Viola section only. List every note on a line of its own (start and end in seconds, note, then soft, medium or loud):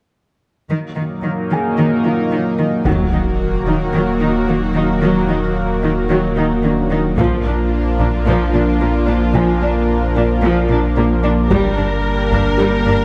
2.86 3.11 F#3 soft
2.86 7.15 F#4 soft
3.13 3.21 D#4 soft
3.67 3.75 D#4 soft
3.94 4.19 F#3 soft
4.21 4.29 D#4 soft
4.48 4.56 A#3 soft
4.76 4.84 D#4 soft
5.03 5.27 F#3 soft
5.29 5.37 D#4 soft
5.83 5.91 D#4 soft
6.10 6.35 F#3 soft
6.38 6.46 D#4 soft
6.65 6.73 A#3 soft
6.91 6.99 D#4 soft
7.18 7.43 F3 medium
7.18 11.51 F4 soft
7.46 7.54 D4 soft
8.00 8.08 D4 soft
8.26 8.51 F3 medium
8.54 8.62 D4 soft
8.80 8.88 A#3 soft
9.07 9.15 D4 medium
9.36 9.60 F3 medium
9.63 9.71 D4 soft
10.15 10.23 D4 soft
10.44 10.68 F3 medium
10.71 10.79 D4 soft
10.98 11.06 A#3 medium
11.24 11.32 D4 medium
11.50 11.76 G3 medium
11.50 13.05 A#4 medium
11.77 11.85 D4 soft
12.32 12.40 D4 soft
12.58 12.84 G3 medium
12.86 12.94 D4 medium